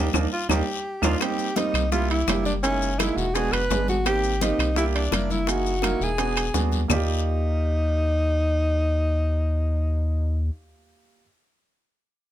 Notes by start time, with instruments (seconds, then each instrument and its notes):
Already playing: alto saxophone G4
0.13 analog synth bass D#2, grand piano A#3 D4 D#4, low bongo, high conga, high timbale, long guiro, claves, maracas
0.33 alto saxophone F4
0.49 analog synth bass D#2, grand piano A#3 D4 D#4, alto saxophone G4, low bongo, high conga, high timbale, long guiro, claves, maracas
1.02 analog synth bass D#2, grand piano A#3 D4 D#4, alto saxophone F4, low bongo, high conga, high timbale, long guiro, claves, maracas
1.20 grand piano G3 A#3 C4 D#4, alto saxophone G4, high bongo, high timbale, long guiro, claves, maracas
1.39 high conga, maracas
1.56 grand piano G3 A#3 C4 D#4, alto saxophone D#4, high bongo, high conga, high timbale, short guiro, maracas
1.74 analog synth bass C2, high conga, high timbale, short guiro, claves, maracas
1.92 grand piano G3 A#3 D4 E4, alto saxophone F4, high bongo, high conga, long guiro, maracas
2.10 alto saxophone E4, high conga, high timbale
2.27 analog synth bass F#1, grand piano G3 A#3 D4 G4, high bongo, low bongo, high conga, high timbale, low timbale, short guiro, claves, maracas
2.45 alto saxophone D4, high conga, short guiro, maracas
2.63 grand piano G#3 A#3 D#4 E4, alto saxophone C#4, high bongo, high timbale, long guiro, maracas
2.82 high bongo, high conga, maracas
2.99 grand piano G#3 A#3 D#4 E4, alto saxophone E4, high bongo, high conga, high timbale, short guiro, claves, maracas
3.16 analog synth bass E1, alto saxophone F#4, high conga, short guiro, maracas
3.34 grand piano G#3 B3 D4 F#4, alto saxophone G#4, high bongo, high conga, high timbale, long guiro, maracas
3.52 analog synth bass F#1, alto saxophone B4, high bongo, high conga, high timbale, claves
3.70 analog synth bass G#1, grand piano G#3 B3 D4 G#4, high bongo, low bongo, high conga, low timbale, short guiro, maracas
3.88 alto saxophone F#4, high bongo, high conga, short guiro, maracas
4.05 grand piano A#3 C4 D#4 G4, alto saxophone G4, high bongo, high conga, high timbale, long guiro, claves, maracas
4.24 high conga, maracas
4.41 grand piano A#3 C4 D#4 G4, alto saxophone D#4, high bongo, high conga, high timbale, short guiro, maracas
4.59 analog synth bass C2, high timbale, short guiro, claves, maracas
4.76 grand piano A#3 D4 E4 G4, alto saxophone E4, high bongo, high conga, long guiro, maracas
4.95 alto saxophone D4, high conga, high timbale
5.11 analog synth bass F#1, grand piano A#3 D4 E4 A#4, high bongo, low bongo, high conga, high timbale, short guiro, claves, maracas
5.30 alto saxophone E4, high conga, short guiro, maracas
5.47 grand piano A#3 D#4 E4 G#4, alto saxophone F#4, high bongo, high conga, high timbale, long guiro, maracas
5.65 high bongo, high conga, maracas
5.82 grand piano A#3 D#4 E4 A#4, high bongo, high conga, high timbale, short guiro, claves, maracas
6.00 analog synth bass E1, alto saxophone G#4, high conga, short guiro, maracas
6.18 grand piano B3 D4 F#4 G#4, high bongo, high conga, high timbale, long guiro, maracas
6.36 high bongo, high conga, high timbale, claves, maracas
6.54 analog synth bass D#2, grand piano B3 D4 F#4 G#4, high bongo, low bongo, high conga, short guiro, maracas
6.72 high bongo, high conga, short guiro, maracas
6.88 analog synth bass D#2, grand piano A#3 F4 D5, alto saxophone D#4, low bongo, low conga, low timbale, long guiro, claves, maracas
6.92 grand piano G4